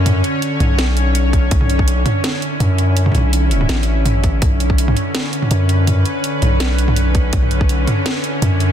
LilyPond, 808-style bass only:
\new Staff \with { instrumentName = "808-style bass" } { \clef bass \time 4/4 \key b \minor \tempo 4 = 165 fis,8 r4 b,,2~ b,,8 | b,,4. r4. fis,4~ | fis,8 b,,4. a,,2 | b,,4. r4. fis,4~ |
fis,8 r4 b,,2~ b,,8 | b,,4. r4. fis,4 | }